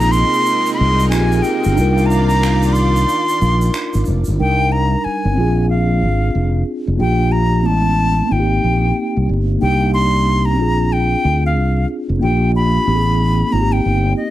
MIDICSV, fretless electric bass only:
0, 0, Header, 1, 3, 480
1, 0, Start_track
1, 0, Key_signature, -3, "minor"
1, 0, Tempo, 652174
1, 1300, Time_signature, 4, 2, 24, 8
1, 10527, End_track
2, 0, Start_track
2, 0, Title_t, "Fretless electric bass"
2, 0, Program_c, 0, 35
2, 0, Note_on_c, 0, 34, 87
2, 165, Note_off_c, 0, 34, 0
2, 590, Note_on_c, 0, 36, 84
2, 828, Note_off_c, 0, 36, 0
2, 828, Note_on_c, 0, 34, 105
2, 1028, Note_off_c, 0, 34, 0
2, 1218, Note_on_c, 0, 31, 83
2, 1292, Note_off_c, 0, 31, 0
2, 1309, Note_on_c, 0, 36, 101
2, 2235, Note_off_c, 0, 36, 0
2, 2511, Note_on_c, 0, 34, 88
2, 2711, Note_off_c, 0, 34, 0
2, 2903, Note_on_c, 0, 32, 87
2, 2975, Note_off_c, 0, 32, 0
2, 2996, Note_on_c, 0, 29, 93
2, 3115, Note_off_c, 0, 29, 0
2, 3144, Note_on_c, 0, 31, 84
2, 3216, Note_off_c, 0, 31, 0
2, 3238, Note_on_c, 0, 36, 81
2, 3638, Note_off_c, 0, 36, 0
2, 3862, Note_on_c, 0, 31, 81
2, 3934, Note_off_c, 0, 31, 0
2, 3951, Note_on_c, 0, 34, 80
2, 4433, Note_on_c, 0, 32, 72
2, 4444, Note_off_c, 0, 34, 0
2, 4631, Note_off_c, 0, 32, 0
2, 4672, Note_on_c, 0, 29, 83
2, 4871, Note_off_c, 0, 29, 0
2, 5059, Note_on_c, 0, 29, 78
2, 5132, Note_off_c, 0, 29, 0
2, 5150, Note_on_c, 0, 34, 90
2, 5631, Note_off_c, 0, 34, 0
2, 5631, Note_on_c, 0, 33, 80
2, 6034, Note_off_c, 0, 33, 0
2, 6116, Note_on_c, 0, 32, 83
2, 6313, Note_off_c, 0, 32, 0
2, 6356, Note_on_c, 0, 34, 78
2, 6553, Note_off_c, 0, 34, 0
2, 6746, Note_on_c, 0, 36, 72
2, 6816, Note_off_c, 0, 36, 0
2, 6839, Note_on_c, 0, 31, 79
2, 7035, Note_off_c, 0, 31, 0
2, 7078, Note_on_c, 0, 36, 89
2, 7795, Note_off_c, 0, 36, 0
2, 7795, Note_on_c, 0, 34, 89
2, 8197, Note_off_c, 0, 34, 0
2, 8275, Note_on_c, 0, 38, 77
2, 8517, Note_off_c, 0, 38, 0
2, 8517, Note_on_c, 0, 36, 86
2, 8714, Note_off_c, 0, 36, 0
2, 8899, Note_on_c, 0, 29, 69
2, 8972, Note_off_c, 0, 29, 0
2, 8997, Note_on_c, 0, 34, 91
2, 9398, Note_off_c, 0, 34, 0
2, 9471, Note_on_c, 0, 33, 88
2, 9874, Note_off_c, 0, 33, 0
2, 9955, Note_on_c, 0, 32, 86
2, 10153, Note_off_c, 0, 32, 0
2, 10195, Note_on_c, 0, 31, 75
2, 10393, Note_off_c, 0, 31, 0
2, 10527, End_track
3, 0, Start_track
3, 0, Title_t, "Muted fretless electric bass strokes"
3, 3718, Note_on_c, 9, 29, 40
3, 3791, Note_off_c, 9, 29, 0
3, 10527, End_track
0, 0, End_of_file